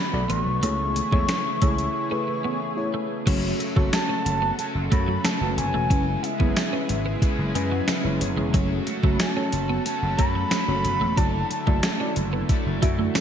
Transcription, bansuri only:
0.00 0.31 B5 medium
0.30 2.94 C#6 medium
3.93 4.55 A5 loud
4.59 4.66 A5 loud
4.92 5.26 B5 loud
5.25 5.59 A5 loud
5.58 6.25 G#5 loud
6.24 7.55 E5 medium
9.13 9.22 B5 medium
9.20 9.32 G#5 loud
9.32 9.86 A5 loud
9.86 10.20 A5 loud
10.19 11.19 B5 loud
11.18 11.50 A5 loud
11.51 12.13 A5 medium

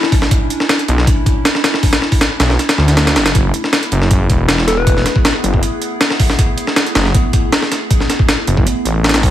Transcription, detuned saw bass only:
0.88 1.05 B1 loud
2.40 2.57 B1 loud
2.78 3.17 D2 loud
3.16 3.33 F#1 medium
3.35 3.52 F#1 loud
3.92 4.09 F#1 loud
4.11 4.28 F#1 loud
4.30 5.04 E1 medium
5.44 5.61 F#1 loud
6.96 7.13 F#1 loud
8.47 8.65 F#1 loud
8.85 9.25 A1 loud
9.23 9.30 C#2 medium

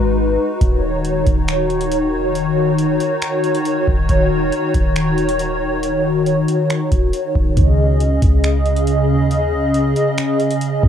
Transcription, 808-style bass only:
0.00 0.38 G#1 loud
0.61 1.24 D#1 loud
1.26 2.15 D#1 loud
2.13 2.58 F1 loud
2.57 2.98 D#1 medium
3.88 4.08 D#1 loud
4.09 4.51 D#1 loud
4.74 6.44 D#1 loud
6.92 7.13 D#1 loud
7.35 7.56 C#1 loud
7.57 8.20 C#2 loud
8.22 9.11 C#2 loud
9.09 9.54 D#2 loud
9.53 9.94 C#2 loud
10.83 10.88 C#2 loud

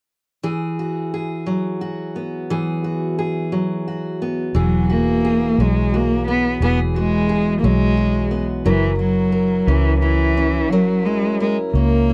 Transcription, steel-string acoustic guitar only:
0.43 2.50 E3 medium
0.43 1.13 G#4 soft
0.79 1.81 F#4 soft
1.14 2.51 G#4 soft
1.47 3.52 F#3 soft
1.81 2.84 F#4 soft
2.16 4.21 B3 soft
2.50 4.54 E3 medium
2.50 3.18 G#4 medium
2.84 3.87 F#4 soft
3.19 4.55 G#4 soft
3.52 5.28 F#3 soft
3.88 4.89 F#4 soft
4.22 6.28 B3 soft
4.55 6.62 E3 medium
4.55 5.23 G#4 medium
4.90 5.93 F#4 soft
5.25 6.61 G#4 medium
5.60 7.64 F#3 soft
5.94 6.96 F#4 soft
6.28 8.30 B3 soft
6.62 8.69 E3 medium
6.62 7.28 G#4 medium
6.96 7.97 F#4 soft
7.29 8.66 G#4 medium
7.64 8.65 F#3 medium
7.97 8.99 F#4 soft
8.31 8.73 B3 soft
8.66 10.71 F#3 medium
8.66 9.31 A#4 medium
8.99 10.01 E4 soft
9.32 10.70 A#4 medium
9.68 10.37 C#4 medium
10.02 11.05 E4 soft
10.37 11.75 C#4 soft
10.72 12.13 F#3 medium
10.72 11.39 A#4 medium
11.06 12.08 E4 soft
11.40 12.13 A#4 medium
11.75 12.13 C#4 soft
12.10 12.13 E4 soft

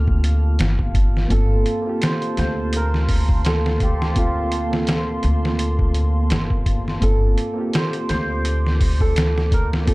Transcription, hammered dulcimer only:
0.00 1.80 F4 medium
0.00 1.22 G4 medium
0.00 0.65 A4 medium
1.32 2.82 A4 loud
2.03 2.39 C5 loud
2.39 5.03 C5 loud
2.76 3.54 A#4 medium
3.48 6.40 A4 medium
3.83 6.97 G4 medium
4.19 7.55 F4 medium
7.03 9.00 A4 medium
7.75 8.09 C5 loud
8.09 9.94 C5 loud
9.01 9.59 A4 medium
9.53 9.63 A#4 medium
9.88 9.94 A4 medium

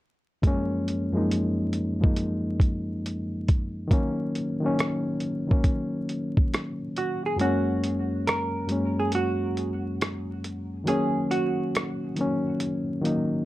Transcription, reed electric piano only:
0.42 0.89 F#2 medium
0.42 0.90 F3 medium
0.42 0.90 G#3 medium
0.46 0.91 A#3 medium
0.46 0.91 C#4 loud
1.12 1.69 F#2 medium
1.12 1.70 F3 medium
1.12 1.70 G#3 medium
1.12 1.71 A#3 medium
1.17 1.72 D#4 medium
2.00 3.19 F#2 medium
2.00 3.20 F3 medium
2.00 3.21 G#3 medium
2.00 3.21 A#3 medium
2.05 3.22 D#4 medium
3.88 4.36 D#3 loud
3.88 4.36 F#3 medium
3.88 4.37 A#3 loud
3.93 4.38 C#4 loud
4.60 5.17 D#3 medium
4.60 5.18 F#3 medium
4.60 5.19 A#3 medium
4.66 5.20 C#4 medium
5.47 6.67 D#3 medium
5.47 6.68 F#3 medium
5.47 6.69 A#3 medium
5.53 6.70 C#4 medium
7.36 8.30 F#2 medium
7.36 8.30 F#3 medium
7.36 8.31 G#3 medium
7.36 8.32 A#3 medium
7.41 8.32 C#4 loud
8.67 9.92 F#2 medium
8.67 9.93 F#3 medium
8.67 9.94 G#3 medium
8.67 9.94 A#3 medium
8.72 9.95 C#4 medium
10.84 11.78 D#3 medium
10.84 11.79 F#3 medium
10.84 11.79 A#3 medium
10.89 11.80 C#4 loud
12.15 12.82 D#3 medium
12.15 12.83 F#3 medium
12.15 12.84 A#3 medium
12.21 12.85 C#4 medium
13.01 13.45 D#3 medium
13.01 13.45 F#3 medium
13.01 13.45 A#3 medium
13.06 13.45 D#4 medium

